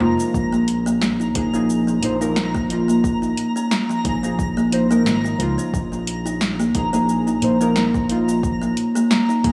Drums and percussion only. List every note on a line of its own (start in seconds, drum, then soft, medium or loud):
0.00 darbuka ka soft
0.00 darbuka tek medium
0.20 cabasa medium
0.34 kick loud
0.34 cabasa medium
0.53 cabasa soft
0.68 closed hi-hat medium
0.87 cabasa medium
1.02 snare loud
1.02 cabasa medium
1.21 cabasa soft
1.35 kick loud
1.35 closed hi-hat loud
1.54 cabasa medium
1.70 cabasa medium
1.88 cabasa soft
2.03 closed hi-hat medium
2.22 cabasa medium
2.36 snare loud
2.36 cabasa medium
2.55 kick loud
2.55 cabasa soft
2.70 closed hi-hat medium
2.89 cabasa medium
3.04 kick loud
3.04 cabasa medium
3.23 cabasa soft
3.37 closed hi-hat medium
3.57 cabasa medium
3.71 snare loud
3.71 cabasa medium
3.90 cabasa soft
4.05 kick loud
4.05 closed hi-hat medium
4.24 cabasa medium
4.39 kick loud
4.39 cabasa medium
4.58 cabasa soft
4.72 closed hi-hat medium
4.91 cabasa medium
5.06 snare loud
5.06 cabasa medium
5.25 cabasa soft
5.40 closed hi-hat medium
5.59 cabasa medium
5.74 kick loud
5.74 cabasa medium
5.93 cabasa soft
6.07 closed hi-hat medium
6.26 cabasa medium
6.41 snare loud
6.41 cabasa medium
6.60 cabasa soft
6.75 kick loud
6.75 closed hi-hat medium
6.94 cabasa medium
7.09 cabasa medium
7.28 cabasa soft
7.42 closed hi-hat medium
7.61 cabasa medium
7.76 snare loud
7.76 cabasa medium
7.94 kick loud
7.94 cabasa soft
8.10 closed hi-hat medium
8.29 cabasa medium
8.43 kick loud
8.43 cabasa medium
8.62 cabasa soft
8.77 closed hi-hat medium
8.96 cabasa medium
9.11 snare loud
9.11 cabasa medium
9.30 cabasa soft
9.44 kick loud
9.44 closed hi-hat medium